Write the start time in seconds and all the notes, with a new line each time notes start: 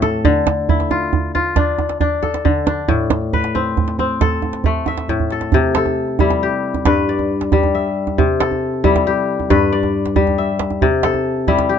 Already playing: A2 A3 C4 E5
0.02 A4, djembe slap, djembe tone
0.25 D3, djembe bass
0.47 djembe slap, djembe tone
0.69 E4, djembe bass
0.80 djembe slap
0.91 F4, djembe slap, djembe tone
1.02 djembe slap
1.13 djembe bass
1.35 F4, djembe tone
1.46 djembe slap
1.56 D4, djembe slap, djembe bass
1.78 djembe tone
1.89 djembe slap
2.00 D4, djembe bass
2.23 A4, djembe tone
2.34 djembe slap
2.45 D3, djembe bass
2.56 djembe slap
2.67 D4, djembe slap, djembe tone
2.88 A2, djembe bass
3.10 djembe slap, djembe tone
3.22 djembe slap
3.33 B4, djembe slap, djembe bass
3.44 djembe slap
3.55 C4, djembe tone
3.66 djembe slap
3.77 djembe slap, djembe bass
3.88 djembe slap
3.99 C4, djembe slap, djembe tone
4.21 A4, djembe slap, djembe bass
4.32 djembe slap
4.42 djembe tone
4.53 djembe slap
4.64 A3, djembe slap, djembe bass
4.86 E5, djembe slap, djembe tone
4.97 djembe slap
5.09 A2, djembe bass
5.20 djembe bass
5.30 A4, djembe slap
5.41 djembe slap
5.52 C3, djembe bass
5.75 A4, djembe slap
5.86 djembe tone
6.08 djembe slap
6.19 G3 E4, djembe bass
6.30 djembe slap
6.43 G4
6.74 djembe slap, djembe tone
6.85 G2 B4, djembe slap, djembe bass
7.09 D5
7.19 djembe tone
7.31 djembe slap
7.41 djembe slap
7.52 G3, djembe bass
7.63 djembe tone
7.74 E5, djembe slap
8.07 djembe tone
8.18 C3, djembe bass
8.40 A4, djembe slap
8.51 djembe tone
8.74 djembe slap
8.84 G3 E4, djembe bass
8.96 djembe slap, djembe tone
9.06 G4, djembe slap
9.40 djembe slap, djembe tone
9.50 G2 B4, djembe slap, djembe bass
9.73 D5
9.83 djembe tone
9.94 djembe slap
10.06 djembe slap
10.16 G3, djembe bass
10.27 djembe tone
10.38 E5, djembe slap
10.59 djembe slap
10.70 djembe tone
10.82 C3, djembe bass
11.03 A4, djembe slap
11.14 djembe tone
11.37 djembe slap
11.48 G3 E4, djembe bass
11.58 djembe slap, djembe tone
11.69 G4